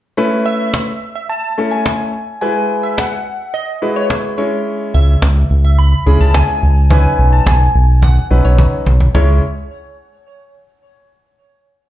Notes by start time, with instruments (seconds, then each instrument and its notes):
0.17 grand piano A3 C#4 E4 B4
0.46 synth pluck E5
0.74 cajon slap
1.15 synth pluck E5
1.29 synth pluck A5
1.58 grand piano A3 C#4 E4 A4
1.71 synth pluck G#5
1.85 synth pluck G#5, cajon slap
2.41 grand piano G#3 E4 F#4 B4, synth pluck G#5
2.83 synth pluck E5
2.98 synth pluck F#5, cajon slap
3.54 synth pluck D#5
3.82 grand piano G#3 E4 F#4 B4
3.96 synth pluck C#5
4.10 cajon slap
4.38 grand piano G#3 C#4 E4 C#5
4.94 analog synth bass C#2, synth pluck E5
5.22 analog synth bass C#2, cajon slap
5.50 analog synth bass C#2
5.65 synth pluck E5
5.79 synth pluck B5
6.06 analog synth bass C#2, grand piano G#3 C#4 E4 G#4
6.20 analog synth bass C#2, synth pluck A5
6.34 synth pluck G#5, cajon slap
6.63 analog synth bass C#2
6.90 grand piano F#3 C#4 D#4 B4, synth pluck G#5, cajon bass
7.19 analog synth bass B1
7.33 synth pluck A5
7.46 analog synth bass B1, synth pluck G#5, cajon bass, cajon slap
7.75 analog synth bass B1
8.02 synth pluck F#5, cajon bass
8.30 analog synth bass B1, grand piano F#3 C#4 D#4 B4
8.45 analog synth bass B1, synth pluck C#5
8.58 cajon bass, cajon slap
8.87 analog synth bass B1, cajon bass
9.00 cajon bass
9.15 analog synth bass C#2, grand piano G#3 C#4 E4 C#5, synth pluck C#5, cajon bass